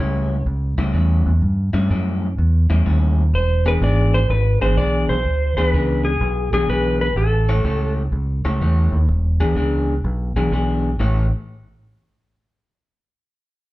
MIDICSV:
0, 0, Header, 1, 4, 480
1, 0, Start_track
1, 0, Tempo, 479233
1, 1425, Time_signature, 4, 2, 24, 8
1, 13742, End_track
2, 0, Start_track
2, 0, Title_t, "Electric slide guitar"
2, 0, Program_c, 0, 29
2, 0, Note_on_c, 0, 73, 70
2, 433, Note_off_c, 0, 73, 0
2, 3355, Note_on_c, 0, 72, 88
2, 3649, Note_off_c, 0, 72, 0
2, 3684, Note_on_c, 0, 71, 91
2, 3734, Note_off_c, 0, 71, 0
2, 3842, Note_on_c, 0, 74, 102
2, 4150, Note_on_c, 0, 72, 99
2, 4163, Note_off_c, 0, 74, 0
2, 4307, Note_off_c, 0, 72, 0
2, 4311, Note_on_c, 0, 71, 96
2, 4623, Note_off_c, 0, 71, 0
2, 4627, Note_on_c, 0, 72, 87
2, 4782, Note_on_c, 0, 74, 99
2, 4787, Note_off_c, 0, 72, 0
2, 5081, Note_off_c, 0, 74, 0
2, 5100, Note_on_c, 0, 72, 97
2, 5574, Note_off_c, 0, 72, 0
2, 5578, Note_on_c, 0, 72, 82
2, 5688, Note_off_c, 0, 72, 0
2, 5688, Note_on_c, 0, 71, 82
2, 6056, Note_on_c, 0, 68, 84
2, 6074, Note_off_c, 0, 71, 0
2, 6536, Note_off_c, 0, 68, 0
2, 6548, Note_on_c, 0, 68, 77
2, 6706, Note_off_c, 0, 68, 0
2, 6707, Note_on_c, 0, 71, 93
2, 7012, Note_off_c, 0, 71, 0
2, 7024, Note_on_c, 0, 71, 93
2, 7169, Note_off_c, 0, 71, 0
2, 7185, Note_on_c, 0, 69, 82
2, 7944, Note_off_c, 0, 69, 0
2, 13742, End_track
3, 0, Start_track
3, 0, Title_t, "Clean electric guitar"
3, 0, Program_c, 1, 27
3, 0, Note_on_c, 1, 45, 70
3, 0, Note_on_c, 1, 55, 71
3, 0, Note_on_c, 1, 61, 70
3, 0, Note_on_c, 1, 64, 84
3, 353, Note_off_c, 1, 45, 0
3, 357, Note_off_c, 1, 55, 0
3, 358, Note_off_c, 1, 61, 0
3, 361, Note_off_c, 1, 64, 0
3, 782, Note_on_c, 1, 64, 95
3, 787, Note_on_c, 1, 61, 79
3, 790, Note_on_c, 1, 55, 64
3, 798, Note_on_c, 1, 45, 67
3, 919, Note_off_c, 1, 45, 0
3, 925, Note_off_c, 1, 55, 0
3, 929, Note_off_c, 1, 61, 0
3, 931, Note_on_c, 1, 45, 74
3, 933, Note_off_c, 1, 64, 0
3, 937, Note_on_c, 1, 55, 73
3, 941, Note_on_c, 1, 61, 69
3, 945, Note_on_c, 1, 64, 74
3, 1308, Note_off_c, 1, 45, 0
3, 1311, Note_off_c, 1, 55, 0
3, 1313, Note_off_c, 1, 61, 0
3, 1315, Note_off_c, 1, 64, 0
3, 1736, Note_on_c, 1, 64, 83
3, 1744, Note_on_c, 1, 61, 91
3, 1747, Note_on_c, 1, 55, 74
3, 1749, Note_on_c, 1, 45, 73
3, 1893, Note_off_c, 1, 45, 0
3, 1896, Note_off_c, 1, 55, 0
3, 1899, Note_off_c, 1, 61, 0
3, 1899, Note_off_c, 1, 64, 0
3, 1905, Note_on_c, 1, 45, 76
3, 1908, Note_on_c, 1, 55, 73
3, 1911, Note_on_c, 1, 61, 77
3, 1915, Note_on_c, 1, 64, 82
3, 2274, Note_off_c, 1, 45, 0
3, 2275, Note_off_c, 1, 55, 0
3, 2277, Note_off_c, 1, 61, 0
3, 2279, Note_off_c, 1, 64, 0
3, 2703, Note_on_c, 1, 64, 85
3, 2707, Note_on_c, 1, 61, 71
3, 2710, Note_on_c, 1, 55, 78
3, 2715, Note_on_c, 1, 45, 69
3, 2849, Note_off_c, 1, 45, 0
3, 2852, Note_off_c, 1, 55, 0
3, 2853, Note_off_c, 1, 61, 0
3, 2857, Note_off_c, 1, 64, 0
3, 2861, Note_on_c, 1, 45, 64
3, 2864, Note_on_c, 1, 55, 62
3, 2865, Note_on_c, 1, 61, 68
3, 2869, Note_on_c, 1, 64, 72
3, 3231, Note_off_c, 1, 45, 0
3, 3233, Note_off_c, 1, 55, 0
3, 3233, Note_off_c, 1, 61, 0
3, 3236, Note_off_c, 1, 64, 0
3, 3664, Note_on_c, 1, 68, 91
3, 3667, Note_on_c, 1, 62, 84
3, 3671, Note_on_c, 1, 59, 72
3, 3676, Note_on_c, 1, 52, 78
3, 3812, Note_off_c, 1, 52, 0
3, 3817, Note_off_c, 1, 59, 0
3, 3818, Note_off_c, 1, 62, 0
3, 3821, Note_off_c, 1, 68, 0
3, 3824, Note_on_c, 1, 52, 73
3, 3829, Note_on_c, 1, 59, 73
3, 3830, Note_on_c, 1, 62, 78
3, 3837, Note_on_c, 1, 68, 75
3, 4192, Note_off_c, 1, 52, 0
3, 4195, Note_off_c, 1, 59, 0
3, 4195, Note_off_c, 1, 62, 0
3, 4199, Note_off_c, 1, 68, 0
3, 4622, Note_on_c, 1, 68, 84
3, 4625, Note_on_c, 1, 62, 80
3, 4632, Note_on_c, 1, 59, 77
3, 4634, Note_on_c, 1, 52, 72
3, 4770, Note_off_c, 1, 52, 0
3, 4776, Note_off_c, 1, 59, 0
3, 4780, Note_off_c, 1, 68, 0
3, 4781, Note_off_c, 1, 62, 0
3, 4782, Note_on_c, 1, 52, 67
3, 4788, Note_on_c, 1, 59, 73
3, 4792, Note_on_c, 1, 62, 75
3, 4797, Note_on_c, 1, 68, 80
3, 5151, Note_off_c, 1, 52, 0
3, 5154, Note_off_c, 1, 59, 0
3, 5156, Note_off_c, 1, 62, 0
3, 5158, Note_off_c, 1, 68, 0
3, 5586, Note_on_c, 1, 68, 97
3, 5593, Note_on_c, 1, 62, 83
3, 5594, Note_on_c, 1, 59, 89
3, 5595, Note_on_c, 1, 52, 79
3, 5735, Note_off_c, 1, 52, 0
3, 5738, Note_off_c, 1, 59, 0
3, 5740, Note_off_c, 1, 62, 0
3, 5741, Note_off_c, 1, 68, 0
3, 5747, Note_on_c, 1, 52, 72
3, 5750, Note_on_c, 1, 59, 80
3, 5752, Note_on_c, 1, 62, 81
3, 5754, Note_on_c, 1, 68, 81
3, 6113, Note_off_c, 1, 52, 0
3, 6114, Note_off_c, 1, 59, 0
3, 6115, Note_off_c, 1, 62, 0
3, 6116, Note_off_c, 1, 68, 0
3, 6541, Note_on_c, 1, 68, 93
3, 6545, Note_on_c, 1, 62, 82
3, 6550, Note_on_c, 1, 59, 77
3, 6554, Note_on_c, 1, 52, 73
3, 6686, Note_off_c, 1, 52, 0
3, 6693, Note_off_c, 1, 59, 0
3, 6694, Note_off_c, 1, 62, 0
3, 6698, Note_off_c, 1, 68, 0
3, 6698, Note_on_c, 1, 52, 71
3, 6705, Note_on_c, 1, 59, 62
3, 6706, Note_on_c, 1, 62, 68
3, 6711, Note_on_c, 1, 68, 75
3, 7068, Note_off_c, 1, 52, 0
3, 7072, Note_off_c, 1, 59, 0
3, 7072, Note_off_c, 1, 62, 0
3, 7074, Note_off_c, 1, 68, 0
3, 7503, Note_on_c, 1, 73, 108
3, 7505, Note_on_c, 1, 67, 81
3, 7508, Note_on_c, 1, 64, 82
3, 7515, Note_on_c, 1, 57, 80
3, 7640, Note_off_c, 1, 57, 0
3, 7647, Note_off_c, 1, 64, 0
3, 7648, Note_off_c, 1, 67, 0
3, 7652, Note_on_c, 1, 57, 76
3, 7654, Note_off_c, 1, 73, 0
3, 7659, Note_on_c, 1, 64, 73
3, 7660, Note_on_c, 1, 67, 78
3, 7666, Note_on_c, 1, 73, 84
3, 8025, Note_off_c, 1, 57, 0
3, 8028, Note_off_c, 1, 64, 0
3, 8029, Note_off_c, 1, 67, 0
3, 8032, Note_off_c, 1, 73, 0
3, 8463, Note_on_c, 1, 73, 89
3, 8464, Note_on_c, 1, 67, 80
3, 8469, Note_on_c, 1, 64, 79
3, 8471, Note_on_c, 1, 57, 75
3, 8613, Note_off_c, 1, 57, 0
3, 8617, Note_off_c, 1, 64, 0
3, 8618, Note_off_c, 1, 67, 0
3, 8619, Note_off_c, 1, 73, 0
3, 8625, Note_on_c, 1, 57, 73
3, 8629, Note_on_c, 1, 64, 80
3, 8630, Note_on_c, 1, 67, 70
3, 8638, Note_on_c, 1, 73, 72
3, 8992, Note_off_c, 1, 57, 0
3, 8994, Note_off_c, 1, 64, 0
3, 8994, Note_off_c, 1, 67, 0
3, 8998, Note_off_c, 1, 73, 0
3, 9419, Note_on_c, 1, 68, 93
3, 9423, Note_on_c, 1, 62, 90
3, 9425, Note_on_c, 1, 59, 82
3, 9428, Note_on_c, 1, 52, 83
3, 9560, Note_off_c, 1, 52, 0
3, 9568, Note_off_c, 1, 59, 0
3, 9572, Note_off_c, 1, 62, 0
3, 9572, Note_on_c, 1, 52, 70
3, 9573, Note_off_c, 1, 68, 0
3, 9580, Note_on_c, 1, 59, 73
3, 9584, Note_on_c, 1, 62, 83
3, 9586, Note_on_c, 1, 68, 77
3, 9946, Note_off_c, 1, 52, 0
3, 9950, Note_off_c, 1, 59, 0
3, 9952, Note_off_c, 1, 62, 0
3, 9953, Note_off_c, 1, 68, 0
3, 10381, Note_on_c, 1, 68, 84
3, 10385, Note_on_c, 1, 62, 83
3, 10389, Note_on_c, 1, 59, 75
3, 10394, Note_on_c, 1, 52, 70
3, 10526, Note_off_c, 1, 52, 0
3, 10530, Note_off_c, 1, 59, 0
3, 10537, Note_off_c, 1, 62, 0
3, 10538, Note_on_c, 1, 52, 56
3, 10539, Note_off_c, 1, 68, 0
3, 10542, Note_on_c, 1, 59, 71
3, 10549, Note_on_c, 1, 62, 76
3, 10551, Note_on_c, 1, 68, 71
3, 10909, Note_off_c, 1, 52, 0
3, 10911, Note_off_c, 1, 59, 0
3, 10915, Note_off_c, 1, 62, 0
3, 10916, Note_off_c, 1, 68, 0
3, 11012, Note_on_c, 1, 57, 76
3, 11019, Note_on_c, 1, 64, 91
3, 11022, Note_on_c, 1, 67, 97
3, 11029, Note_on_c, 1, 73, 88
3, 11275, Note_off_c, 1, 57, 0
3, 11279, Note_off_c, 1, 64, 0
3, 11280, Note_off_c, 1, 67, 0
3, 11283, Note_off_c, 1, 73, 0
3, 13742, End_track
4, 0, Start_track
4, 0, Title_t, "Fingered electric bass"
4, 0, Program_c, 2, 33
4, 0, Note_on_c, 2, 37, 94
4, 430, Note_off_c, 2, 37, 0
4, 463, Note_on_c, 2, 37, 91
4, 763, Note_off_c, 2, 37, 0
4, 779, Note_on_c, 2, 37, 83
4, 929, Note_off_c, 2, 37, 0
4, 939, Note_on_c, 2, 40, 82
4, 1241, Note_off_c, 2, 40, 0
4, 1265, Note_on_c, 2, 40, 77
4, 1412, Note_off_c, 2, 40, 0
4, 1421, Note_on_c, 2, 43, 87
4, 1721, Note_off_c, 2, 43, 0
4, 1741, Note_on_c, 2, 43, 81
4, 1889, Note_off_c, 2, 43, 0
4, 1904, Note_on_c, 2, 42, 89
4, 2348, Note_off_c, 2, 42, 0
4, 2388, Note_on_c, 2, 40, 91
4, 2684, Note_off_c, 2, 40, 0
4, 2709, Note_on_c, 2, 40, 71
4, 2853, Note_off_c, 2, 40, 0
4, 2868, Note_on_c, 2, 39, 88
4, 3310, Note_off_c, 2, 39, 0
4, 3339, Note_on_c, 2, 28, 87
4, 3784, Note_off_c, 2, 28, 0
4, 3818, Note_on_c, 2, 32, 96
4, 4264, Note_off_c, 2, 32, 0
4, 4301, Note_on_c, 2, 32, 91
4, 4599, Note_off_c, 2, 32, 0
4, 4623, Note_on_c, 2, 32, 73
4, 4768, Note_off_c, 2, 32, 0
4, 4779, Note_on_c, 2, 35, 86
4, 5078, Note_off_c, 2, 35, 0
4, 5104, Note_on_c, 2, 35, 91
4, 5249, Note_off_c, 2, 35, 0
4, 5258, Note_on_c, 2, 38, 95
4, 5557, Note_off_c, 2, 38, 0
4, 5579, Note_on_c, 2, 38, 81
4, 5726, Note_off_c, 2, 38, 0
4, 5740, Note_on_c, 2, 37, 95
4, 6184, Note_off_c, 2, 37, 0
4, 6217, Note_on_c, 2, 35, 97
4, 6517, Note_off_c, 2, 35, 0
4, 6537, Note_on_c, 2, 35, 77
4, 6684, Note_off_c, 2, 35, 0
4, 6698, Note_on_c, 2, 35, 90
4, 7143, Note_off_c, 2, 35, 0
4, 7171, Note_on_c, 2, 33, 92
4, 7619, Note_off_c, 2, 33, 0
4, 7655, Note_on_c, 2, 37, 91
4, 8101, Note_off_c, 2, 37, 0
4, 8134, Note_on_c, 2, 37, 91
4, 8435, Note_off_c, 2, 37, 0
4, 8463, Note_on_c, 2, 37, 78
4, 8608, Note_off_c, 2, 37, 0
4, 8618, Note_on_c, 2, 40, 87
4, 8918, Note_off_c, 2, 40, 0
4, 8936, Note_on_c, 2, 39, 83
4, 9084, Note_off_c, 2, 39, 0
4, 9097, Note_on_c, 2, 28, 99
4, 9397, Note_off_c, 2, 28, 0
4, 9415, Note_on_c, 2, 38, 84
4, 9564, Note_off_c, 2, 38, 0
4, 9572, Note_on_c, 2, 37, 86
4, 10020, Note_off_c, 2, 37, 0
4, 10058, Note_on_c, 2, 35, 84
4, 10358, Note_off_c, 2, 35, 0
4, 10377, Note_on_c, 2, 35, 85
4, 10525, Note_off_c, 2, 35, 0
4, 10535, Note_on_c, 2, 35, 85
4, 10983, Note_off_c, 2, 35, 0
4, 11019, Note_on_c, 2, 33, 86
4, 11320, Note_off_c, 2, 33, 0
4, 13742, End_track
0, 0, End_of_file